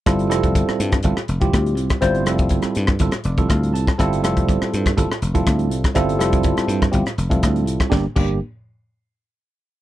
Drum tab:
CC |----------------|----------------|----------------|----------------|
HH |xxxxx-xxx-xxxxxx|xxxxxxx-xxxxxxx-|xxxxx-xxx-xxxxxx|xxxxxxx-xxxxxxx-|
SD |r-r--r-r-r--r--r|r-r--r-r-r--r--r|r-r--r-r-r--r--r|r-r--r-r-r--r--r|
BD |o--oo--oo--oo--o|o--oo--oo--oo--o|o--oo--oo--oo--o|o--oo--oo--oo--o|

CC |--x-------------|
HH |----------------|
SD |o---------------|
BD |o-o-------------|